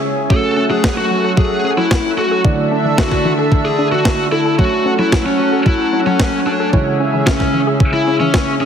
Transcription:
Already playing: C#3 G#3 C#4 E4 G#4 C#5 E5
0.30 F#3 A3 C#4 F#4 A4 C#5 F#5, kick
0.57 C#4
0.70 F#3 G#4
0.84 F#4, kick, snare
0.97 F#4
1.11 F#3
1.24 A4
1.37 F#3 G#4, kick
1.64 C#4
1.78 F#3 E4
1.91 F#4, kick, snare
2.18 F#4 A4
2.31 A4
2.45 D3 E3 A3 D4 E4 A4 D5 E5, kick
2.72 D4
2.85 E3
2.98 E4 F#4, kick, snare
3.11 kick, snare
3.25 E3
3.39 A4
3.52 E3, kick
3.65 G#4
3.79 D4
3.92 E3 F#4
4.05 E4, kick, snare
4.32 E4 A4
4.45 A4
4.59 F#3 A3 C#4 F#4 C#5 F#5, kick
4.86 C#4
4.99 F#3 E4
5.12 F#4, kick, snare
5.26 C#4
5.39 F#3
5.53 A4
5.66 F#3 E4, kick
5.93 C#4
6.06 F#3 C#4
6.20 F#4, kick, snare
6.46 D4 A4
6.60 A4
6.73 C#3 E3 G#3 C#4 E4 G#4 C#5 E5, kick
7.00 C#4
7.14 E3
7.26 C#4 E4, kick, snare
7.40 kick, snare
7.54 E3
7.67 G#4
7.80 E3, kick
7.94 E4
8.07 C#4
8.20 E3 C#4
8.34 E4, kick, snare
8.60 C#4 G#4

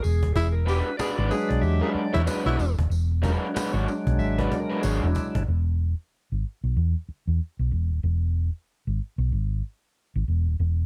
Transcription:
0.02 E1 G#4, cajon slap, tambourine
0.23 D#1, cajon bass
0.34 E1 E4 G#4, cajon bass, tambourine
0.52 A#4
0.65 G#3 D4 F#4 G4 B4, cajon slap, tambourine
0.88 cajon slap
0.97 G#3 D4 F#4 G#4 B4 D5, cajon slap, tambourine
1.18 G#1 G#3 D4 F#4 B4
1.29 F#3 G#3 D4 G#4 B4, cajon slap, tambourine
1.49 B1 D5, cajon bass, cajon slap
1.61 E2 G4 E5, cajon slap, tambourine
1.81 G#3 D4 F#4 G#4 B4
1.94 D5, muted fingered electric bass stroke
2.13 E2 G#3 D4 E4 F#4 C#5 E5, cajon bass, cajon slap
2.25 F#3 G#3 D4 F#4 B4, cajon slap, tambourine
2.45 B1 G#3 D4 E4 F#4 C#5
2.58 E1, cajon slap, tambourine
2.79 D#1, cajon bass
2.90 E1, cajon slap, tambourine
3.11 cajon slap
3.22 F#3 G#3 D4 F#4 B4, cajon bass, tambourine
3.45 cajon slap
3.54 G#3 D4 F#4 B4, cajon slap, tambourine
3.73 G#1 G#3 D4 F#4 C#5
3.88 cajon slap, tambourine
4.07 B1, cajon bass, cajon slap
4.18 G#1 E5, cajon slap, tambourine
4.39 G#3 D4 F#4 B4 D5, cajon bass
4.52 cajon bass, tambourine
4.60 A#4
4.70 G#3 D4 F#4 B4, cajon slap
4.81 G#1 G#3 D4 F#4 G#4 C#5, cajon slap, tambourine
5.02 E1 E4
5.15 cajon bass, tambourine
5.35 G1, cajon bass
5.48 E1
6.32 G#1
6.64 B1
6.77 E2
7.09 muted fingered electric bass stroke
7.27 E2
7.59 B1
7.72 E1
7.91 D#1
8.03 E1
8.87 G#1
9.18 B1
9.32 G#1
10.16 G#1
10.28 E1
10.47 D#1
10.60 E1

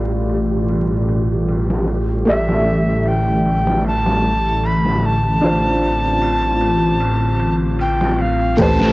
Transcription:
Already playing: A1 B2 G3 A3 F4 G4 B4 D5
0.11 ride
0.29 ride
0.69 ride
1.09 ride
1.48 ride
1.70 snare
1.88 ride
2.08 ride
2.25 A1 D3 A3 E4 G4 D5 E5, ride
2.30 E5
2.49 snare
2.66 ride
3.06 G5, ride
3.45 ride
3.67 snare
3.84 A5, ride
4.06 snare
4.24 ride
4.63 B5, ride
4.86 snare
5.03 A5, ride
5.24 ride
5.41 A1 C4 D4 F4, ride
5.45 C5
5.82 open hi-hat
6.21 ride
6.42 ride
6.61 ride
7.00 ride
7.40 ride
7.79 G5, ride
8.01 snare
8.18 F5, ride
8.39 ride
8.57 A1 C3 A3 G4 B4, kick, ride
8.61 C5 A5
8.80 snare

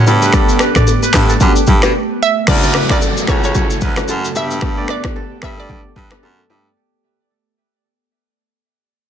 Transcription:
Already playing: A4 B4 C#5
0.06 G2 A3 B3 D4 G4 A4, low bongo, shaker
0.22 B4, shaker
0.33 B3 D4 G4 A4 D5, finger snap, kick, cross-stick, low conga, shaker
0.49 shaker
0.59 B4, finger snap, cross-stick, shaker
0.75 B3 D4 G4 A4 D5, finger snap, kick, cross-stick, mid tom, high bongo, shaker
0.87 high bongo, shaker
1.03 B4, shaker
1.13 G2 B3 D4 G4 A4, finger snap, kick, cross-stick, clap, mid tom, open hi-hat, low bongo, shaker
1.29 A4, shaker
1.40 F#2 B3 D4 G4 A4, kick, low conga, shaker
1.56 shaker
1.67 G2, kick, low conga, shaker
1.82 B2 B3 D4 G4 A4, finger snap, cross-stick, low bongo, shaker
2.23 E5
2.47 D2 C#3 A3 E4 F#4 A4 D5, finger snap, kick, cross-stick, crash, downlifter, low conga, shaker
2.63 D5, shaker
2.74 B4, finger snap, cross-stick, shaker
2.89 D2 C#4 E4 F#4 A4 D5, finger snap, kick, cross-stick, low bongo, shaker
3.01 A4, high bongo, shaker
3.17 shaker
3.27 C#2 C#4 E4 F#4 A4 C#5, finger snap, kick, cross-stick, shaker
3.44 C#5, high bongo, shaker
3.55 C#4 E4 F#4 A4 C#5, kick, low conga, shaker
3.70 shaker
3.81 D2 B4, kick, low conga, shaker
3.96 C#4 E4 F#4 A4, finger snap, cross-stick, low bongo, shaker
4.08 F#2 A4, high bongo, shaker
4.25 shaker
4.35 G2 A3 B3 D4 G4 A4 E5, low bongo, shaker
4.51 shaker
4.61 B3 D4 G4 A4, finger snap, kick, cross-stick, low conga
4.78 D5
4.88 B4 D5, finger snap, cross-stick
5.04 B3 D4 G4 A4, finger snap, kick, cross-stick, low bongo
5.16 A4, high bongo
5.42 G2 B3 D4 G4 A4 E5, finger snap, kick, cross-stick
5.58 D5, high bongo
5.69 B3 D4 G4 A4 D5, kick, low conga
5.96 G2 B4, kick, low conga
6.11 B3 D4 G4 A4, finger snap, cross-stick, low bongo
6.23 F#2 A4, high bongo
6.50 G2 G4, low bongo

